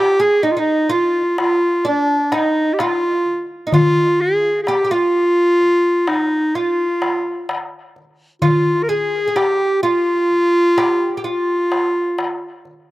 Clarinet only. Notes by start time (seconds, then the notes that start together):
Already playing: G4
0.21 G#4
0.44 D#4
0.51 F4
0.59 D#4
0.92 F4
1.40 F4
1.88 D4
2.35 D#4
2.73 G4
2.81 F4
3.74 F4
4.21 G#4
4.63 G#4
4.67 G4
4.92 F4
6.08 D#4
6.55 F4
8.42 F4
8.83 A#4
8.89 G#4
9.37 G4
9.83 F4
11.26 F4